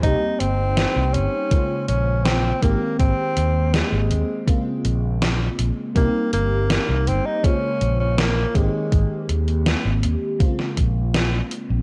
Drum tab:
HH |x-x-x-x-x-x-x-x-|x-x-x-x-x-x-x-x-|x-x-x-x-x-x-x-x-|x-xxx-x-x-x-x-x-|
SD |----o-------o---|----o-------o---|----o-------o---|----o----o--o---|
BD |o-------o-----o-|o-------o-------|o-------o-----o-|o-------o-o-----|